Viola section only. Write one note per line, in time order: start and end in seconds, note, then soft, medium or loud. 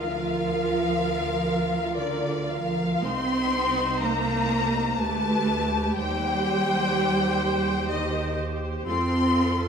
0.00 3.00 F4 medium
0.00 3.00 A#4 medium
3.05 4.95 D#4 medium
3.05 4.95 C5 medium
5.00 8.83 G4 medium
5.00 5.93 B4 medium
5.98 8.83 C5 medium
8.87 9.68 F4 medium
8.87 9.68 A4 medium